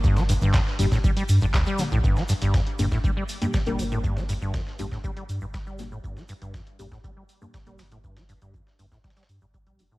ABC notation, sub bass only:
X:1
M:4/4
L:1/16
Q:1/4=120
K:C
V:1 name="Sub bass" clef=bass
G,,,3 G,,, z2 G,,, z3 G,, G,,, D,, z2 _B,,, | G,,, z2 G,,, z2 G,,, z6 F,,, G,,,2- | G,,,3 G,,, z2 G,,, z3 G,, G,,,4- G,,, | G,,, z2 G,,, z2 G,,, z6 F,,, G,,,2- |
G,,,3 G,,, z2 G,,, z3 G,, G,,,2 _B,,, F,,, D,,, |]